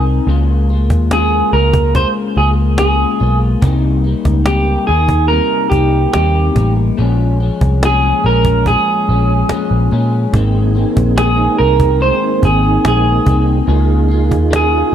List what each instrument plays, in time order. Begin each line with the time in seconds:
Already playing: picked electric bass C2, clean electric guitar C4 D#4 A#4
0.07 cajon slap
0.27 picked electric bass C#2, clean electric guitar C#3 G#3 A#3 F4, cajon slap
0.69 clean electric guitar A#3 F4, cajon slap
0.73 clean electric guitar G#3
0.90 picked electric bass D#2, cajon bass, cajon slap
1.11 clean electric guitar C#3 G#3 A#3 F4 G#4, cajon slap
1.53 picked electric bass C#2, clean electric guitar G#3 A#3 F4 A#4, cajon slap
1.73 cajon bass
1.94 clean electric guitar C#3 G#3 A#3 F4 C5, cajon bass
2.17 cajon slap
2.36 picked electric bass C#2, clean electric guitar G#3 A#3 F4 G#4, cajon slap
2.57 cajon slap
2.78 clean electric guitar C#3 G#3 A#3 F4 G#4, cajon slap
3.20 picked electric bass B1, clean electric guitar G#3 A#3 F4, cajon slap
3.42 cajon slap
3.62 picked electric bass C2, clean electric guitar C3 G3 A#3 D#4, cajon bass
4.04 clean electric guitar G3 A#3 D#4, cajon slap
4.25 picked electric bass C#2, cajon bass, cajon slap
4.46 clean electric guitar C3 G3 A#3 D#4 G4, cajon slap
4.87 picked electric bass D#2, clean electric guitar A#3 D#4 G#4, cajon slap
5.09 cajon bass
5.28 clean electric guitar C3 G3 A#4, cajon slap
5.33 clean electric guitar A#3 D#4
5.52 cajon slap
5.70 picked electric bass C2, clean electric guitar D#4 G4, cajon bass
5.75 clean electric guitar G3 A#3
5.92 cajon slap
6.13 picked electric bass D#2, clean electric guitar C3 G3 A#3 D#4 G4, cajon slap
6.56 picked electric bass A1, clean electric guitar G3 A#3 D#4, cajon bass
6.77 cajon slap
6.98 picked electric bass A#1, clean electric guitar A#2 F3 G#3 C#4, cajon slap
7.40 clean electric guitar F3 G#3 C#4, cajon slap
7.61 picked electric bass C2, cajon bass, cajon slap
7.83 clean electric guitar A#2 F3 G#3 C#4 G#4, cajon slap
8.04 cajon slap
8.23 picked electric bass A#1, clean electric guitar F3 G#3 C#4 A#4, cajon slap
8.45 cajon bass
8.66 clean electric guitar A#2 F3 G#3 C#4 G#4, cajon bass
8.88 cajon slap
9.07 picked electric bass A#1, clean electric guitar G#3 C#4, cajon slap
9.12 clean electric guitar F3
9.28 cajon slap
9.49 clean electric guitar A#2 F3 G#3 C#4, muted picked electric bass stroke, cajon slap
9.69 picked electric bass A#1, cajon slap
9.91 picked electric bass A#2, clean electric guitar F3 G#3 C#4, cajon slap
10.12 cajon slap
10.32 picked electric bass G#1, clean electric guitar G#2 D#3 A#3 C4, tonewheel organ A#3 C4 D#4 G#4, cajon bass
10.74 clean electric guitar D#3 A#3 C4, cajon slap
10.97 picked electric bass A#1, cajon bass, cajon slap
11.16 clean electric guitar G#2 D#3 A#3 C4 G#4, cajon slap
11.58 picked electric bass C2, clean electric guitar D#3 A#3 C4 A#4, cajon slap
11.80 cajon bass
12.00 clean electric guitar G#2 D#3 A#3 C4 C5, tonewheel organ A#3 C4 D#4 G#4, cajon slap
12.23 cajon slap
12.42 picked electric bass G#1, clean electric guitar D#3 A#3 C4 G#4, cajon bass
12.64 cajon slap
12.84 picked electric bass A#1, clean electric guitar G#2 D#3 A#3 C4 G#4, cajon slap
13.25 picked electric bass C2, clean electric guitar D#3 A#3 C4, cajon bass
13.48 cajon slap
13.66 picked electric bass C#2, clean electric guitar C#3 A#3 F4 G#4, tonewheel organ A#3 D#4 F4 G#4, cajon slap
14.08 clean electric guitar A#3 F4 G#4, cajon slap
14.31 picked electric bass D#2, cajon bass, cajon slap
14.51 clean electric guitar C#3 A#3 F4 G#4, cajon slap
14.56 clean electric guitar G#4
14.91 clean electric guitar G#4